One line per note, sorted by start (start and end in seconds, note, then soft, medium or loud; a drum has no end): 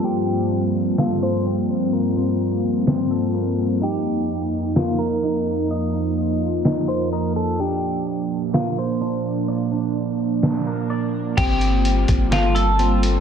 0.00 3.78 G2 medium
0.00 3.78 F3 medium
0.00 3.78 G3 medium
0.00 7.55 A#3 medium
0.00 3.78 C4 medium
0.00 1.45 C4 medium
0.00 3.78 F4 medium
0.00 0.94 G4 medium
0.00 0.75 A4 medium
0.00 0.98 A#4 medium
0.98 1.21 F4 medium
0.98 2.40 A4 medium
0.98 snare loud
1.23 1.89 C5 medium
1.46 2.16 C4 medium
1.93 3.34 A#4 medium
2.17 2.86 C4 medium
2.87 3.81 C4 medium
2.87 snare medium
3.11 3.82 A4 medium
3.35 3.82 A#4 medium
3.81 7.56 F2 medium
3.81 11.34 F3 medium
3.81 5.22 D#4 medium
3.81 5.69 D#4 medium
3.81 4.73 G4 medium
4.76 4.99 F4 medium
4.76 6.18 A#4 medium
4.76 snare loud
4.99 5.66 A#4 medium
5.23 5.92 D#4 medium
5.71 7.58 F4 medium
5.71 7.11 D#5 medium
5.94 6.64 D#4 medium
6.65 7.59 D#4 medium
6.65 snare loud
6.88 7.60 A#4 medium
6.88 7.11 C5 medium
7.13 7.35 A#4 medium
7.13 7.60 D#5 medium
7.36 7.59 A4 medium
7.59 11.34 A#2 medium
7.59 11.34 A#3 medium
7.59 9.00 D4 medium
7.59 11.34 D4 medium
7.59 8.50 G4 loud
8.54 8.77 F4 medium
8.54 9.96 A#4 medium
8.54 snare loud
8.79 9.45 C5 medium
9.01 9.71 D4 medium
9.48 10.89 D5 medium
9.72 10.42 D4 medium
10.43 11.38 D4 medium
10.43 snare medium
10.67 11.38 A#4 medium
10.90 11.37 D5 medium
11.37 12.06 G1 loud
11.37 13.20 G3 medium
11.37 13.20 A#3 medium
11.37 12.78 C4 loud
11.37 13.20 F4 medium
11.37 12.28 G4 loud
11.37 kick loud
11.37 closed hi-hat medium
11.37 crash loud
11.61 closed hi-hat medium
11.85 closed hi-hat medium
12.08 13.20 G1 loud
12.08 kick loud
12.08 closed hi-hat medium
12.32 12.55 F4 medium
12.32 13.20 A4 medium
12.32 snare loud
12.32 closed hi-hat medium
12.55 13.20 A4 medium
12.55 closed hi-hat medium
12.79 13.20 C4 medium
12.79 closed hi-hat medium
13.03 closed hi-hat medium